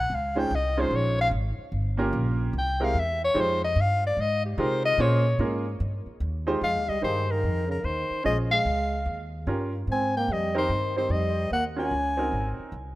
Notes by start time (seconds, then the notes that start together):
Already playing: F#5
0.10 C#2
0.15 F5
0.35 G#3 C#4 D#4 F4 C5 G5
0.51 C2
0.55 D#5
0.77 G#3 C#4 D#4 F4 C5
0.91 A#1
0.96 C#5
1.21 F5
1.31 G#1
1.58 muted upright bass stroke
1.72 G1
1.97 A#3 C#4 F4 G4 A#4
2.13 A#1
2.53 C2
2.58 G5
2.80 G#3 C4 E4 G4 A#4
2.84 F5
2.94 E2
3.00 E5
3.24 C#5
3.34 F2 G#3 D#4 F4 G4 C5
3.41 C5
3.65 D#5
3.76 G2
3.81 F5
4.07 D5
4.17 G#2
4.21 D#5
4.46 G4
4.58 C3 G#3 D#4 F4 G4 A#4 C5
4.86 D#5
4.98 A#2 A#3 C#4 F4 G#4 C5 C#5
5.39 G#2 A#3 C#4 F4 G#4 A#4
5.80 G2
6.06 muted upright bass stroke
6.20 D#2
6.47 G#3 D#4 F4 G4 C5
6.61 F2 G#3 F5
6.76 D#2
6.87 C2 G3 D#5
7.01 G2 D#3 D#4 G4 G#4 C5
7.28 D#3 A#4
7.44 F2
7.67 C#3 A#4
7.83 D#2 D#3 C5
8.10 muted upright bass stroke
8.24 A#1 G#3 C#4 F4 G#4 C5 D#5
8.51 G#3 F5
8.65 C#2
9.06 D#2
9.47 G2 C#4 F4 G4 A#4
9.87 G#2 C4
9.92 G#5
10.17 A#3 G5
10.28 F2 G3 D#5
10.55 D#3 C4 D#4 G4 A#4 C5
10.69 G2
10.96 D#3 C4 D#4 G4 C5
11.09 F2 G3 D#5
11.51 D#2 A#3 F#5
11.76 C#4 F4 F#4 A#4 G#5
11.91 C#2
12.17 C4 D#4 F#4 A#4
12.32 G#1
12.59 muted upright bass stroke
12.72 C2